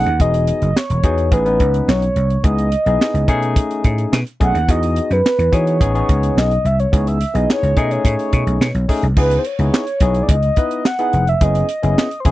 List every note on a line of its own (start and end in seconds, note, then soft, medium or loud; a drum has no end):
0.00 0.23 F#5 loud
0.06 0.21 D#2 medium
0.06 closed hi-hat soft
0.20 0.50 E1 medium
0.20 0.69 B3 medium
0.20 0.69 D#4 medium
0.20 0.69 F#4 medium
0.20 0.69 G#4 medium
0.20 0.78 D#5 loud
0.20 kick medium
0.20 closed hi-hat medium
0.34 closed hi-hat medium
0.47 closed hi-hat medium
0.62 0.72 F#1 medium
0.62 closed hi-hat soft
0.76 1.35 C#5 loud
0.76 snare medium
0.76 clap medium
0.90 1.00 E1 medium
0.90 closed hi-hat medium
1.03 1.33 E2 medium
1.03 1.28 B3 medium
1.03 1.29 D#4 medium
1.03 1.29 F#4 medium
1.03 1.29 G#4 medium
1.03 kick medium
1.03 closed hi-hat medium
1.18 closed hi-hat soft
1.31 1.60 A1 loud
1.31 1.43 B3 medium
1.31 1.43 C#4 medium
1.31 1.43 D#4 medium
1.31 1.43 G#4 medium
1.31 1.91 B4 medium
1.31 kick loud
1.31 closed hi-hat loud
1.45 2.03 B3 medium
1.45 2.03 C#4 medium
1.45 2.03 D#4 medium
1.45 2.03 B4 medium
1.45 closed hi-hat soft
1.60 1.80 C#2 medium
1.60 kick medium
1.60 closed hi-hat medium
1.74 closed hi-hat medium
1.88 2.08 B1 loud
1.88 2.44 C#5 medium
1.88 snare loud
1.88 clap medium
2.02 closed hi-hat soft
2.16 2.36 C2 medium
2.16 closed hi-hat medium
2.30 closed hi-hat soft
2.44 2.74 C#2 loud
2.44 2.69 B3 medium
2.44 2.69 D#4 medium
2.44 2.69 E4 medium
2.44 2.69 G#4 medium
2.44 4.09 D#5 loud
2.44 kick loud
2.44 closed hi-hat medium
2.58 closed hi-hat medium
2.72 closed hi-hat medium
2.86 2.96 B1 medium
2.86 3.28 B3 medium
2.86 3.27 D#4 medium
2.86 3.29 E4 medium
2.86 3.28 G#4 medium
2.86 closed hi-hat soft
3.01 snare loud
3.01 clap medium
3.14 3.24 C#2 medium
3.14 closed hi-hat medium
3.28 3.58 B2 loud
3.28 4.18 A3 medium
3.28 4.18 C#4 medium
3.28 4.18 D#4 medium
3.28 4.18 G#4 loud
3.28 kick medium
3.28 closed hi-hat medium
3.43 closed hi-hat medium
3.56 kick loud
3.56 closed hi-hat loud
3.71 closed hi-hat soft
3.84 4.04 A2 medium
3.84 kick medium
3.84 closed hi-hat medium
3.98 closed hi-hat medium
4.13 4.22 B2 loud
4.13 snare loud
4.13 clap medium
4.27 closed hi-hat soft
4.40 4.51 B1 medium
4.40 4.57 A3 medium
4.40 4.57 C#4 medium
4.40 4.57 D#4 medium
4.40 4.57 G#4 medium
4.40 4.72 F#5 loud
4.40 kick medium
4.40 closed hi-hat medium
4.54 4.64 D#2 medium
4.54 closed hi-hat medium
4.68 4.98 E2 medium
4.68 5.18 B3 medium
4.68 5.18 D#4 medium
4.68 5.18 F#4 medium
4.68 5.18 G#4 medium
4.68 5.14 D#5 loud
4.68 kick loud
4.68 closed hi-hat medium
4.83 closed hi-hat medium
4.96 closed hi-hat medium
5.10 5.20 F#2 medium
5.10 5.55 B4 loud
5.10 closed hi-hat medium
5.26 snare medium
5.26 clap medium
5.39 5.48 E2 medium
5.39 closed hi-hat medium
5.52 5.82 E3 loud
5.52 5.77 B3 medium
5.52 5.77 D#4 medium
5.52 5.77 F#4 medium
5.52 5.77 G#4 medium
5.52 6.40 C#5 loud
5.52 kick medium
5.52 closed hi-hat medium
5.67 closed hi-hat soft
5.80 6.01 A1 loud
5.80 5.92 B3 medium
5.80 5.92 C#4 medium
5.80 5.92 D#4 medium
5.80 5.92 G#4 medium
5.80 kick loud
5.80 closed hi-hat loud
5.95 6.52 B3 medium
5.95 6.52 C#4 medium
5.95 6.52 D#4 medium
5.95 6.52 G#4 medium
5.95 closed hi-hat soft
6.09 6.29 C#2 medium
6.09 kick medium
6.09 closed hi-hat medium
6.23 closed hi-hat medium
6.37 6.57 B1 medium
6.37 6.68 D#5 loud
6.37 snare loud
6.37 clap medium
6.51 closed hi-hat soft
6.65 6.85 C2 medium
6.65 6.81 E5 medium
6.65 closed hi-hat medium
6.80 7.09 C#5 medium
6.80 closed hi-hat soft
6.92 7.23 C#2 loud
6.92 7.17 B3 medium
6.92 7.17 D#4 medium
6.92 7.17 E4 medium
6.92 7.18 G#4 medium
6.92 kick loud
6.92 closed hi-hat medium
7.07 7.37 E5 medium
7.07 closed hi-hat medium
7.21 closed hi-hat medium
7.34 7.45 B1 medium
7.34 7.77 B3 medium
7.34 7.76 D#4 medium
7.34 7.77 E4 medium
7.34 7.76 G#4 medium
7.34 7.49 D#5 medium
7.34 closed hi-hat medium
7.50 7.79 C#5 loud
7.50 snare loud
7.50 clap medium
7.63 7.73 C#2 medium
7.63 closed hi-hat medium
7.77 7.97 B2 medium
7.77 8.67 A3 medium
7.77 8.67 C#4 medium
7.77 8.67 D#4 medium
7.77 8.67 G#4 medium
7.77 7.93 D#5 medium
7.77 kick medium
7.77 closed hi-hat medium
7.91 8.90 C#5 medium
7.91 closed hi-hat soft
8.05 8.15 A2 medium
8.05 kick loud
8.05 closed hi-hat loud
8.19 closed hi-hat soft
8.33 8.43 B2 medium
8.33 kick medium
8.33 closed hi-hat medium
8.47 8.57 B1 medium
8.47 closed hi-hat medium
8.60 8.71 B2 loud
8.60 snare loud
8.60 clap medium
8.74 8.85 B1 medium
8.74 closed hi-hat soft
8.88 9.05 A3 medium
8.88 9.05 C#4 medium
8.88 9.05 D#4 medium
8.88 9.06 G#4 medium
8.88 kick medium
8.88 open hi-hat medium
9.03 9.13 C2 medium
9.03 closed hi-hat soft
9.17 9.37 C#2 loud
9.17 9.42 B3 medium
9.17 9.42 D#4 medium
9.17 9.42 E4 medium
9.17 9.42 G#4 medium
9.17 9.40 B4 medium
9.17 kick loud
9.17 crash medium
9.31 closed hi-hat medium
9.39 9.48 C5 medium
9.45 10.24 C#5 medium
9.45 closed hi-hat medium
9.59 9.69 C#2 loud
9.59 9.84 B3 medium
9.59 9.84 D#4 medium
9.59 9.84 E4 medium
9.59 9.84 G#4 medium
9.59 closed hi-hat medium
9.74 snare loud
9.74 clap medium
9.87 closed hi-hat medium
10.00 10.21 B1 medium
10.00 10.34 B3 medium
10.00 10.34 D#4 medium
10.00 10.34 E4 medium
10.00 10.34 G#4 medium
10.00 kick loud
10.00 closed hi-hat medium
10.14 closed hi-hat soft
10.23 10.32 D5 medium
10.29 10.49 C#2 loud
10.29 10.88 D#5 loud
10.29 kick loud
10.29 closed hi-hat loud
10.43 closed hi-hat soft
10.56 10.82 B3 medium
10.56 10.82 D#4 medium
10.56 10.82 E4 medium
10.56 10.82 B4 medium
10.56 kick loud
10.56 closed hi-hat medium
10.71 closed hi-hat medium
10.85 11.30 F#5 loud
10.85 snare loud
10.85 clap medium
10.99 11.24 B3 medium
10.99 11.24 D#4 medium
10.99 11.24 E4 medium
10.99 11.24 G#4 medium
10.99 closed hi-hat soft
11.13 11.33 F1 medium
11.13 closed hi-hat medium
11.27 11.45 E5 loud
11.27 closed hi-hat soft
11.41 11.61 F#1 loud
11.41 11.66 B3 medium
11.41 11.66 C#4 medium
11.41 11.66 E4 medium
11.41 11.66 G#4 medium
11.41 12.22 D#5 loud
11.41 kick loud
11.41 closed hi-hat medium
11.55 closed hi-hat medium
11.69 closed hi-hat loud
11.83 11.93 F#1 loud
11.83 12.08 B3 medium
11.83 12.08 C#4 medium
11.83 12.08 E4 medium
11.83 12.08 G#4 medium
11.83 closed hi-hat medium
11.98 snare loud
11.98 clap medium
12.11 closed hi-hat medium
12.20 12.29 C5 medium
12.25 12.31 E1 loud
12.25 12.31 B3 medium
12.25 12.31 C#4 medium
12.25 12.31 E4 medium
12.25 12.31 G#4 medium
12.25 12.31 C#5 medium
12.25 kick medium
12.25 closed hi-hat medium